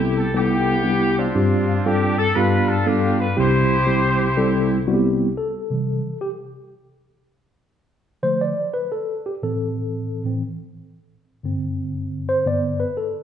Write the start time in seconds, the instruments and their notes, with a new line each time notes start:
Already playing: tine electric piano C2 C3 G3 B3 C4 E4 A4, horn section E4 G4
0.18 horn section A4
0.34 tine electric piano G3 B3 D#4 A4, horn section B3 E4 G4
0.40 tine electric piano E4
0.84 tine electric piano G3 B3 D4 G4
0.90 tine electric piano E4
1.18 horn section C4 D4 F4
1.35 tine electric piano G2 G3 C4 D4 F4 G4
1.86 tine electric piano G3 C4 D4 F4 A4, horn section G4
2.19 horn section A4
2.35 tine electric piano G2 G3 B3 D4 F4 G4, horn section D4 F4 B4
2.69 horn section A4
2.86 tine electric piano G3 B3 D4 F4 A4, horn section G4
3.21 horn section B4
3.37 tine electric piano C2 C3 G3 C4 E4 G4, horn section E4 G4 C5
3.86 tine electric piano G3 C4 E4 G4
4.37 tine electric piano G3 C4 E4 A4
4.87 tine electric piano G3 B3 C4 E4 F#4
4.94 tine electric piano G4
5.37 tine electric piano A4
5.71 tine electric piano C3 E3 G3
6.21 tine electric piano G4
8.23 tine electric piano D3 F3 A3 C5
8.41 tine electric piano D5
8.74 tine electric piano B4
8.92 tine electric piano A4
9.26 tine electric piano G4
9.43 tine electric piano A2 E3 C4 A4
10.24 tine electric piano A2 E3 C4
11.43 tine electric piano G2 D3 C4
12.29 tine electric piano C5
12.45 tine electric piano G2 D3 B3 D5
12.80 tine electric piano B4
12.97 tine electric piano A4